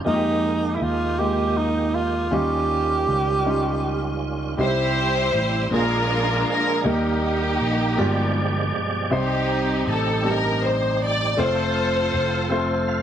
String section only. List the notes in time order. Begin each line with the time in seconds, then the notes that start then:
4.60 E4 G4 C5
5.74 D4 F4 A#4
6.51 A#4
6.89 A#3 D#4 G4
9.13 C4 D#4 G4
9.90 A4
10.28 A#4
10.65 C5
11.03 D5
11.40 F4 A4 C5